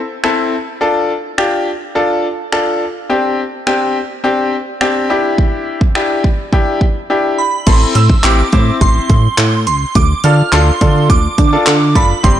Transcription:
0.24 0.54 C4 medium
0.24 0.54 E4 medium
0.24 0.54 A4 loud
0.24 finger snap loud
0.81 1.11 D4 medium
0.81 1.11 F4 medium
0.81 1.11 A4 loud
1.38 1.68 D4 medium
1.38 1.68 F4 medium
1.38 1.68 G4 medium
1.38 finger snap loud
1.95 2.25 D4 medium
1.95 2.25 F4 medium
1.95 2.25 A4 loud
2.52 2.82 D4 medium
2.52 2.82 F4 medium
2.52 2.83 A4 medium
2.52 finger snap loud
3.10 3.40 C4 medium
3.10 3.40 D4 medium
3.10 3.40 G4 medium
3.67 3.97 C4 medium
3.67 3.97 D4 medium
3.67 3.97 G4 loud
3.67 finger snap loud
4.24 4.54 C4 medium
4.24 4.54 D4 medium
4.24 4.54 G4 loud
4.81 5.10 C4 medium
4.81 5.08 D4 medium
4.81 5.09 G4 loud
4.81 finger snap loud
5.10 5.78 D4 medium
5.10 5.78 E4 medium
5.10 5.79 G4 medium
5.38 kick loud
5.81 kick medium
5.95 6.25 D4 medium
5.95 6.26 E4 medium
5.95 6.26 G4 medium
5.95 finger snap loud
6.24 kick medium
6.53 6.83 D4 medium
6.53 6.83 E4 medium
6.53 6.83 G4 loud
6.53 kick medium
6.81 kick medium
7.10 7.40 D4 medium
7.10 7.40 E4 medium
7.10 7.40 G4 medium
7.38 7.68 B5 medium
7.67 7.85 A1 loud
7.67 7.97 C4 medium
7.67 7.97 E4 medium
7.67 7.97 A4 medium
7.67 7.93 C6 medium
7.67 kick loud
7.67 closed hi-hat medium
7.67 crash medium
7.95 8.14 A2 medium
7.95 8.25 E6 medium
7.95 closed hi-hat medium
8.10 kick loud
8.24 8.43 A1 medium
8.24 8.39 C4 medium
8.24 8.39 E4 medium
8.24 8.39 G4 loud
8.24 8.77 D6 loud
8.24 clap loud
8.24 closed hi-hat medium
8.52 8.71 A2 loud
8.52 9.13 C4 medium
8.52 9.13 E4 medium
8.52 9.13 C5 medium
8.52 kick medium
8.52 closed hi-hat medium
8.81 9.00 A1 loud
8.81 9.66 C6 medium
8.81 kick loud
8.81 closed hi-hat medium
9.10 9.28 A2 loud
9.10 kick medium
9.10 closed hi-hat medium
9.38 9.68 A2 loud
9.38 clap loud
9.38 closed hi-hat medium
9.67 9.85 C#2 medium
9.67 9.94 C6 medium
9.67 closed hi-hat medium
9.95 10.14 D2 loud
9.95 10.25 D6 loud
9.95 kick loud
9.95 closed hi-hat medium
10.24 10.43 D3 loud
10.24 10.39 D4 medium
10.24 10.39 F4 medium
10.24 10.39 A4 medium
10.24 10.53 F6 loud
10.24 closed hi-hat medium
10.52 10.71 D2 loud
10.52 10.67 D4 medium
10.52 10.68 F4 medium
10.52 10.68 A4 loud
10.52 11.06 C6 medium
10.52 clap loud
10.52 closed hi-hat medium
10.81 11.11 D3 loud
10.81 11.18 D4 medium
10.81 11.18 F4 medium
10.81 11.19 A4 medium
10.81 kick loud
10.81 closed hi-hat medium
11.10 11.28 D2 loud
11.10 11.98 D6 loud
11.10 kick loud
11.10 closed hi-hat medium
11.38 11.57 D3 medium
11.38 kick medium
11.38 closed hi-hat medium
11.53 11.75 D4 medium
11.53 11.75 F4 medium
11.53 11.75 A4 medium
11.67 11.97 D3 loud
11.67 clap loud
11.67 closed hi-hat medium
11.95 12.14 F#1 medium
11.95 12.10 D4 medium
11.95 12.10 F4 medium
11.95 12.11 A4 medium
11.95 12.25 B5 medium
11.95 kick medium
11.95 closed hi-hat medium
12.23 12.40 G1 loud
12.23 12.40 C4 medium
12.23 12.40 D4 medium
12.23 12.40 G4 medium
12.23 12.40 C6 medium
12.23 kick loud
12.23 closed hi-hat medium

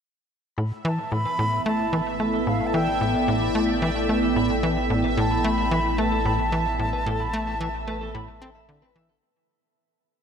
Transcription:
0.58 9.20 A1 medium
0.58 0.72 A2 medium
0.58 9.23 B3 medium
0.58 9.24 E5 medium
0.58 0.68 B5 medium
0.85 0.99 E3 loud
0.85 0.95 A5 medium
0.85 1.13 A5 medium
0.85 0.90 B5 medium
0.90 9.23 E4 medium
0.98 1.09 E5 medium
1.12 1.26 A2 medium
1.12 1.65 B5 loud
1.25 1.32 B4 medium
1.30 9.23 A4 medium
1.39 1.60 A2 medium
1.39 1.52 A4 medium
1.52 1.63 B5 medium
1.66 1.87 A3 loud
1.66 2.16 A5 medium
1.79 6.43 D5 medium
1.79 1.90 A5 medium
1.93 2.01 E3 loud
1.93 2.03 E5 medium
2.13 9.23 G5 medium
2.20 2.41 A3 medium
2.20 2.26 B4 medium
2.33 2.46 A4 medium
2.47 2.61 A2 medium
2.47 2.68 F5 medium
2.47 2.57 B5 medium
2.67 2.75 A5 medium
2.74 2.88 E3 loud
2.74 3.28 G5 loud
2.74 2.84 A5 medium
2.87 2.98 E5 medium
3.01 3.15 A2 medium
3.14 3.21 B4 medium
3.28 3.49 A2 loud
3.28 3.41 A4 medium
3.42 3.52 B5 medium
3.55 3.76 A3 medium
3.69 3.79 A5 medium
3.82 3.91 E3 loud
3.82 3.92 E5 medium
4.09 4.31 A3 medium
4.09 4.15 B4 medium
4.23 4.36 A4 medium
4.36 4.50 A2 medium
4.36 4.46 B5 medium
4.63 4.77 E3 medium
4.63 4.74 A5 medium
4.77 4.87 E5 medium
4.90 5.04 A2 medium
5.04 5.10 B4 medium
5.17 5.39 A2 loud
5.17 5.30 A4 medium
5.17 5.46 A5 medium
5.31 5.41 B5 medium
5.44 5.66 A3 loud
5.44 6.00 B5 loud
5.58 5.68 A5 medium
5.71 5.80 E3 medium
5.71 5.82 E5 medium
5.98 6.20 A3 medium
5.98 6.05 B4 medium
5.98 8.69 A5 loud
6.12 6.25 A4 medium
6.25 6.40 A2 medium
6.25 9.23 E5 medium
6.25 6.36 B5 medium
6.52 6.67 E3 medium
6.52 6.63 A5 medium
6.66 6.76 E5 medium
6.79 6.94 A2 medium
6.93 6.99 B4 loud
7.06 7.28 A2 loud
7.06 7.19 A4 medium
7.20 7.30 B5 medium
7.33 7.55 A3 loud
7.47 7.57 A5 medium
7.60 7.69 E3 loud
7.60 7.71 E5 medium
7.87 8.09 A3 medium
7.87 7.94 B4 loud
8.01 8.14 A4 medium
8.14 8.29 A2 medium
8.14 8.25 B5 medium
8.42 8.50 C4 loud
8.42 8.48 A4 medium
8.55 8.65 E5 medium
8.69 8.83 D3 medium
8.82 8.92 B4 medium
8.96 9.10 E3 medium
8.96 9.06 E5 loud
9.09 9.15 A4 medium

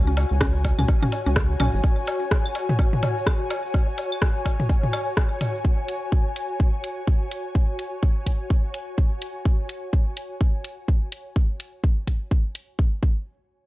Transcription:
0.00 0.25 C#2 loud
0.00 9.46 F#4 medium
0.00 9.46 C#5 medium
0.00 9.46 G#5 medium
0.07 0.11 C#4 medium
0.07 shaker soft
0.17 closed hi-hat medium
0.17 low woodblock medium
0.17 shaker medium
0.31 0.73 C#2 loud
0.31 shaker soft
0.41 0.46 C#4 loud
0.41 kick loud
0.41 cross-stick medium
0.41 low woodblock soft
0.41 shaker medium
0.55 shaker soft
0.65 kick medium
0.65 closed hi-hat medium
0.65 low woodblock medium
0.65 shaker medium
0.79 0.86 C#2 medium
0.79 0.83 C#4 medium
0.79 mid tom medium
0.79 claves medium
0.79 shaker soft
0.88 kick loud
0.88 low woodblock medium
0.88 shaker medium
1.02 1.05 C#4 loud
1.02 mid tom medium
1.02 shaker soft
1.12 closed hi-hat loud
1.12 low woodblock soft
1.12 shaker loud
1.26 1.56 C#2 medium
1.26 1.30 C#4 medium
1.26 shaker soft
1.36 kick loud
1.36 cross-stick medium
1.36 low woodblock medium
1.36 shaker medium
1.51 shaker soft
1.60 1.70 B1 medium
1.60 1.65 C#4 loud
1.60 closed hi-hat medium
1.60 mid tom medium
1.60 claves medium
1.60 low woodblock medium
1.60 shaker medium
1.74 1.81 G#1 loud
1.74 shaker soft
1.84 kick loud
1.84 low woodblock soft
1.84 shaker soft
1.98 shaker soft
2.06 closed hi-hat medium
2.06 low woodblock medium
2.06 shaker medium
2.21 shaker soft
2.31 kick loud
2.31 cross-stick medium
2.31 low woodblock medium
2.31 shaker medium
2.46 claves medium
2.46 shaker soft
2.55 closed hi-hat medium
2.55 low woodblock soft
2.55 shaker loud
2.69 mid tom medium
2.69 shaker soft
2.79 kick loud
2.79 low woodblock medium
2.79 shaker medium
2.93 mid tom medium
2.93 shaker soft
3.03 closed hi-hat loud
3.03 mid tom medium
3.03 low woodblock medium
3.03 shaker medium
3.17 shaker soft
3.26 kick loud
3.26 cross-stick medium
3.26 claves medium
3.26 low woodblock soft
3.26 shaker medium
3.41 shaker soft
3.50 closed hi-hat medium
3.50 low woodblock medium
3.50 shaker medium
3.65 shaker soft
3.74 kick loud
3.74 low woodblock medium
3.74 shaker medium
3.88 shaker soft
3.98 closed hi-hat medium
3.98 low woodblock soft
3.98 shaker medium
4.12 claves medium
4.12 shaker soft
4.22 kick loud
4.22 cross-stick medium
4.22 low woodblock medium
4.22 shaker medium
4.36 shaker soft
4.46 kick medium
4.46 closed hi-hat medium
4.46 low woodblock medium
4.46 shaker medium
4.59 mid tom medium
4.59 shaker soft
4.69 kick loud
4.69 low woodblock soft
4.69 shaker soft
4.83 mid tom medium
4.83 shaker soft
4.93 closed hi-hat medium
4.93 claves medium
4.93 low woodblock medium
4.93 shaker medium
5.07 shaker soft
5.17 kick loud
5.17 cross-stick medium
5.17 low woodblock medium
5.17 shaker medium
5.31 shaker soft
5.41 closed hi-hat medium
5.41 mid tom medium
5.41 low woodblock soft
5.41 shaker medium
5.55 shaker soft
5.65 kick loud
5.89 closed hi-hat medium
6.12 kick loud
6.36 closed hi-hat medium
6.60 kick loud
6.84 closed hi-hat medium
7.07 kick loud
7.31 closed hi-hat medium
7.55 kick loud
7.79 closed hi-hat medium
8.03 kick loud
8.26 kick medium
8.26 closed hi-hat medium
8.50 kick loud
8.74 closed hi-hat medium
8.98 kick loud
9.22 closed hi-hat medium
9.45 kick loud
9.69 closed hi-hat medium
9.93 kick loud
10.17 closed hi-hat medium
10.41 kick loud
10.64 closed hi-hat medium
10.88 kick loud
11.12 closed hi-hat medium
11.36 kick loud
11.60 closed hi-hat medium
11.84 kick loud
12.07 kick medium
12.07 closed hi-hat medium
12.31 kick loud
12.55 closed hi-hat medium
12.79 kick loud
13.03 kick loud

